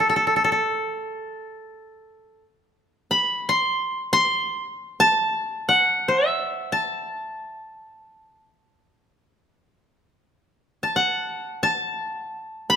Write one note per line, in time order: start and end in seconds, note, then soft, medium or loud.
0.09 0.16 A4 medium
0.16 0.27 A4 soft
0.27 0.36 A4 soft
0.36 0.44 A4 soft
0.44 0.51 A4 medium
0.52 2.42 A4 soft
3.11 3.55 B5 medium
3.49 4.12 C6 medium
4.13 5.26 C6 medium
5.00 6.26 A5 medium
5.69 7.08 F#5 medium
6.08 7.58 E5 medium
6.72 8.47 A5 medium
10.83 11.63 A5 medium
10.96 12.35 F#5 medium
11.63 12.76 A5 medium
12.70 12.76 B5 medium